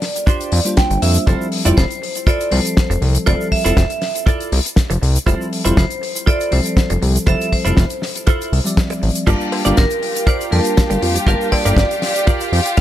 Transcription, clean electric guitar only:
0.02 muted clean electric guitar stroke
0.27 D4 F4 G4 C5
0.77 G5
0.90 muted clean electric guitar stroke
1.02 E5, muted clean electric guitar stroke
1.27 E4 F4 A4 C5
1.65 E4 F4 A4 D5
2.02 muted clean electric guitar stroke
2.27 E4 F4 A4 C5
2.90 muted clean electric guitar stroke
3.02 muted clean electric guitar stroke
3.26 E4 F4 A4 D5
3.65 E4 F4 A4 C5
4.02 muted clean electric guitar stroke
4.26 E4 F4 A4 D5
4.90 muted clean electric guitar stroke
5.02 muted clean electric guitar stroke
5.26 E4 F4 A4 C5
5.65 E4 F4 A4 C5
6.02 muted clean electric guitar stroke
6.26 E4 F4 A4 C5
6.90 muted clean electric guitar stroke
7.02 muted clean electric guitar stroke
7.27 E4 F4 A4 C5
7.65 E4 F4 A4 C5
8.02 muted clean electric guitar stroke
8.27 E4 F4 A4 C5
8.90 muted clean electric guitar stroke
9.02 muted clean electric guitar stroke
9.27 F4 G4 A#4 D5
9.65 F4 G4 A#4 D5
10.02 muted clean electric guitar stroke
10.27 F4 G4 A#4 D5
10.90 muted clean electric guitar stroke
11.02 muted clean electric guitar stroke
11.27 F4 G4 A#4 F5
11.65 F4 G4 A#4 D5
12.02 muted clean electric guitar stroke
12.27 F4 G4 A#4 D5
12.77 F5

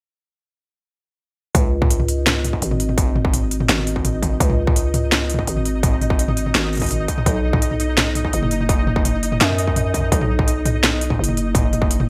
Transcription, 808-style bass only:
1.55 C#2
2.62 G#1
3.69 G#1
4.40 C#2
5.48 G#1
6.55 G#1
7.26 B1
8.34 F#1
9.41 F#2
10.12 B1
11.19 F#1

